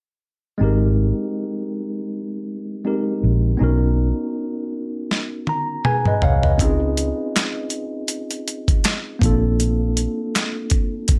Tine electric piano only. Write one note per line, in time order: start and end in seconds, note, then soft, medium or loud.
0.58 2.79 G#3 medium
0.58 2.80 C4 medium
0.58 2.81 D#4 medium
0.62 2.82 G4 medium
0.62 2.83 A#4 medium
2.84 3.59 G#3 soft
2.84 3.59 C4 soft
2.84 3.59 D#4 soft
2.84 3.60 G4 soft
2.84 3.61 A#4 soft
3.57 6.54 B3 medium
3.57 6.55 C#4 medium
3.57 6.56 D#4 medium
3.62 6.57 F#4 medium
3.62 5.82 A#4 medium
5.49 5.83 A#5 medium
5.85 6.05 G#4 soft
5.85 6.05 B4 soft
5.85 6.20 G#5 medium
6.07 6.22 B4 medium
6.07 6.22 D#5 medium
6.23 6.43 C#5 soft
6.23 6.43 F5 medium
6.23 6.57 F#5 medium
6.44 6.79 B4 soft
6.44 6.79 D#5 soft
6.58 9.17 C4 medium
6.58 9.18 C#4 medium
6.58 9.19 D#4 medium
6.62 9.19 F4 medium
6.62 9.20 G#4 medium
9.19 11.19 A#3 medium
9.19 11.19 C4 medium
9.19 11.19 D4 medium
9.24 11.19 F4 medium
9.24 11.19 A4 medium